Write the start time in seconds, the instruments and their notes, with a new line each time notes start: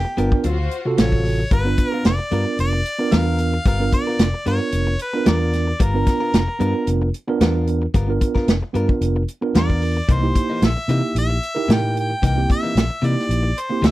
Already playing: harmonica G4
0.05 muted clean electric guitar stroke
0.17 fingered electric bass G1, clean electric guitar G3 B3 F4 A#4, tine electric piano B3 D4 F4 A#4, closed hi-hat
0.32 muted clean electric guitar stroke, kick
0.44 fingered electric bass D2, clean electric guitar D3 F#3 C4 F4, string section F4 F#4 C5, closed hi-hat
0.59 muted clean electric guitar stroke
0.71 closed hi-hat
0.85 tine electric piano C3 F4 F#4 A4, muted clean electric guitar stroke
0.98 fingered electric bass A1, clean electric guitar D3 F#3 C4 F4, harmonica C#5, snare, closed hi-hat
1.12 clean electric guitar F#3 C4 F4, kick
1.24 muted clean electric guitar stroke, snare, open hi-hat
1.39 muted clean electric guitar stroke
1.51 fingered electric bass G1, clean electric guitar G3 B3 F4 A#4, harmonica B4, kick, closed hi-hat
1.65 tine electric piano B3 D4 F4 B4
1.78 muted clean electric guitar stroke, kick, closed hi-hat
1.89 harmonica A#4, clean electric guitar A#4
1.94 clean electric guitar B3 F4
2.05 fingered electric bass F1, harmonica D5, snare, closed hi-hat
2.19 muted clean electric guitar stroke
2.31 fingered electric bass G2, clean electric guitar G3 B3 F4 A#4, tine electric piano B3 D4 F4 A#4, closed hi-hat
2.46 muted clean electric guitar stroke
2.59 fingered electric bass F1, harmonica D5, closed hi-hat
2.73 muted clean electric guitar stroke
2.86 closed hi-hat
2.99 tine electric piano B3 D4 F4 A#4, muted clean electric guitar stroke
3.12 fingered electric bass E2, clean electric guitar G3 B3 F4 A#4, harmonica F5, snare, closed hi-hat
3.26 clean electric guitar B3 A#4
3.38 muted clean electric guitar stroke, closed hi-hat
3.54 muted clean electric guitar stroke
3.65 fingered electric bass G1, clean electric guitar G3 B3 F4 A#4, harmonica F5, kick, closed hi-hat
3.79 tine electric piano B3 D4 F4 A#4
3.92 harmonica D5, muted clean electric guitar stroke, kick, closed hi-hat
4.07 clean electric guitar B3 F4 A#4
4.19 fingered electric bass F1, muted clean electric guitar stroke, snare, closed hi-hat
4.34 muted clean electric guitar stroke
4.46 fingered electric bass G2, clean electric guitar G3 B3 F4 A#4, tine electric piano B3 D4 F4 A#4, harmonica C#5, closed hi-hat
4.72 fingered electric bass F1, closed hi-hat
4.87 muted clean electric guitar stroke
4.99 harmonica B4, closed hi-hat
5.13 tine electric piano B3 D4 F4 A#4, muted clean electric guitar stroke
5.26 fingered electric bass E2, clean electric guitar G3 B3 F4 A#4, harmonica D5, snare, closed hi-hat
5.40 clean electric guitar B3 F4 A#4
5.53 snare, closed hi-hat
5.67 muted clean electric guitar stroke
5.80 fingered electric bass G1, clean electric guitar G3 B3 F4 A#4, harmonica A#4, kick, closed hi-hat
5.94 tine electric piano B3 D4 F4 A#4
6.06 muted clean electric guitar stroke, kick, snare, closed hi-hat
6.20 clean electric guitar B3 F4 A#4
6.33 fingered electric bass F1, muted clean electric guitar stroke, snare, closed hi-hat
6.48 muted clean electric guitar stroke
6.59 fingered electric bass G2, clean electric guitar G3 B3 F4 A#4, tine electric piano B3 D4 F4 A#4, closed hi-hat
6.75 muted clean electric guitar stroke
6.87 fingered electric bass F1, closed hi-hat
7.02 muted clean electric guitar stroke
7.14 closed hi-hat
7.27 tine electric piano B3 D4 F4 A#4, muted clean electric guitar stroke
7.41 fingered electric bass E2, clean electric guitar G3 B3 F4 A#4, snare, closed hi-hat
7.55 clean electric guitar B3 F4 A#4
7.67 muted clean electric guitar stroke, closed hi-hat
7.82 muted clean electric guitar stroke
7.94 fingered electric bass G1, clean electric guitar G3 B3 F4 A#4, kick, closed hi-hat
8.07 tine electric piano B3 D4 F4 A#4
8.21 muted clean electric guitar stroke, kick, closed hi-hat
8.35 clean electric guitar B3 F4 A#4, kick, snare
8.48 fingered electric bass F1, snare, closed hi-hat
8.63 muted clean electric guitar stroke
8.73 fingered electric bass G2, clean electric guitar G3 B3 F4 A#4, tine electric piano B3 D4 F4 A#4, closed hi-hat
8.89 muted clean electric guitar stroke, kick
9.01 fingered electric bass F1, closed hi-hat
9.16 muted clean electric guitar stroke
9.28 closed hi-hat
9.41 tine electric piano B3 D4 F4 A#4, muted clean electric guitar stroke
9.55 fingered electric bass E2, clean electric guitar G3 B3 F4 A#4, harmonica D5, snare, closed hi-hat
9.69 clean electric guitar B3 F4 A#4, kick
9.82 muted clean electric guitar stroke, open hi-hat
9.97 muted clean electric guitar stroke
10.08 fingered electric bass C2, clean electric guitar C3 E3 A#3 D#4, harmonica C5, kick, closed hi-hat
10.21 tine electric piano A#3 D#4 E4 G4
10.35 muted clean electric guitar stroke, kick, closed hi-hat
10.50 clean electric guitar E3 A#3 D#4
10.62 fingered electric bass A#1, harmonica E5, snare, closed hi-hat
10.77 muted clean electric guitar stroke
10.88 fingered electric bass C3, clean electric guitar C3 E3 A#3 D#4, tine electric piano A#3 D#4 E4 G4, closed hi-hat
11.03 muted clean electric guitar stroke
11.15 fingered electric bass A#1, harmonica E5, closed hi-hat
11.30 muted clean electric guitar stroke
11.43 closed hi-hat
11.55 tine electric piano D#4 E4 G4 A#4, muted clean electric guitar stroke
11.68 fingered electric bass A2, clean electric guitar C3 E3 A#3 D#4, snare, closed hi-hat
11.73 harmonica G5
11.82 clean electric guitar E3 A#3 D#4
11.96 harmonica G5, muted clean electric guitar stroke, closed hi-hat
12.10 muted clean electric guitar stroke
12.22 fingered electric bass C2, clean electric guitar C3 E3 A#3 D#4, harmonica G5, kick, closed hi-hat
12.36 tine electric piano A#3 C4 E4 G4
12.49 harmonica E5, muted clean electric guitar stroke, kick, closed hi-hat
12.63 clean electric guitar E3 A#3 D#4
12.75 fingered electric bass A#1, snare, closed hi-hat
12.90 muted clean electric guitar stroke
13.02 clean electric guitar C3 E3 A#3 D#4, fingered electric bass C3, tine electric piano A#3 D#4 E4 G4, closed hi-hat
13.06 harmonica D5
13.16 muted clean electric guitar stroke, snare
13.29 fingered electric bass A#1, closed hi-hat
13.43 muted clean electric guitar stroke
13.58 harmonica C5, closed hi-hat
13.70 tine electric piano A#3 C4 E4 G4, muted clean electric guitar stroke
13.82 fingered electric bass D2, clean electric guitar C3 E3 A#3 D#4, harmonica E5, snare, closed hi-hat